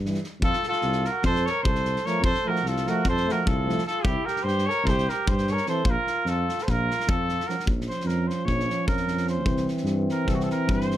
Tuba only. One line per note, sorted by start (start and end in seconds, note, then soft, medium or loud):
0.00 0.16 G2 medium
0.40 0.53 F2 medium
0.83 1.06 C2 medium
1.23 1.46 F2 loud
1.63 1.96 C2 medium
2.21 2.34 F2 medium
2.63 2.86 C2 medium
3.04 3.27 F2 loud
3.45 3.77 C2 medium
4.04 4.16 C2 medium
4.44 4.67 G2 medium
4.84 5.07 C2 loud
5.27 5.59 G2 medium
5.84 5.96 A#1 medium
6.25 6.48 F2 medium
6.67 6.90 A#1 loud
7.07 7.39 F2 medium
7.65 7.88 A#1 medium
8.05 8.28 F2 medium
8.45 8.68 A#1 medium
8.87 9.46 F2 medium
9.45 9.68 C2 medium
9.84 10.07 G2 loud
10.25 10.49 C2 medium
10.67 10.97 G2 medium